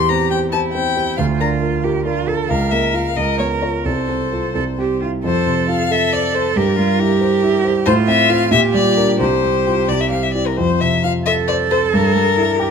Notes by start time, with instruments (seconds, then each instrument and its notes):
Already playing: grand piano E2, cello G4, violin C6
0.09 grand piano C4 C5, violin A#5
0.31 grand piano G4 C5, violin G5
0.52 cello E4, grand piano G4 C5, violin A5
0.73 grand piano C4 C5, violin G5
0.97 grand piano G4 C5
1.17 grand piano D2, cello F4, violin F5
1.40 grand piano D4 A#4, violin A#5
1.62 grand piano F4 A#4
1.84 grand piano F4 A#4, cello G4
2.05 grand piano D4 A#4, cello F4
2.27 grand piano F4 A#4, cello A4
2.49 grand piano C#2, cello A#4, violin F5
2.71 grand piano A#3 A#4, violin E5
2.94 grand piano F4 A#4, violin F5
3.16 grand piano C#2, cello A#4, violin D#5
3.39 grand piano B3 C#5, violin C#5
3.61 grand piano F4 C#5, violin A#4
3.85 grand piano C2, cello A4, violin C5
4.08 grand piano C4 A4
4.32 grand piano F4 A4
4.55 grand piano C2, cello A4
4.78 grand piano C4 G4, cello G4
5.01 grand piano E4 G4, cello F4
5.24 grand piano F2, cello A4, violin C5
5.46 grand piano C3
5.69 grand piano F4, violin F5
5.91 grand piano A4, cello A4, violin E5
6.13 grand piano C5, violin D5
6.35 grand piano A4, violin C5
6.56 grand piano G2, cello G4, violin A#4
6.77 grand piano G3, cello F4
6.99 grand piano E4, cello G4
7.21 grand piano C5
7.43 grand piano E4
7.65 grand piano C5
7.86 grand piano A2, cello F4, violin C5
8.07 grand piano C4, violin E5
8.29 grand piano F4 C5, violin F5
8.51 grand piano A#2, cello G4, violin E5
8.74 grand piano G3, violin D5
8.97 grand piano D4 A#4
9.20 grand piano C2, cello G4, violin C5
9.43 grand piano C4
9.66 grand piano F4 G4
9.89 grand piano C2, violin D5
10.01 violin E5
10.10 grand piano C4, violin F5
10.23 violin E5
10.34 grand piano E4 G4, violin D5
10.47 violin A#4
10.57 grand piano F2, violin C5
10.81 grand piano C3, violin E5
11.03 grand piano F4, violin F5
11.26 cello A4, grand piano A4, violin E5
11.48 grand piano C5, violin D5
11.71 grand piano A4, violin C5
11.93 grand piano G2, violin A#4
12.15 grand piano G3
12.37 grand piano E4
12.60 cello G4, grand piano G4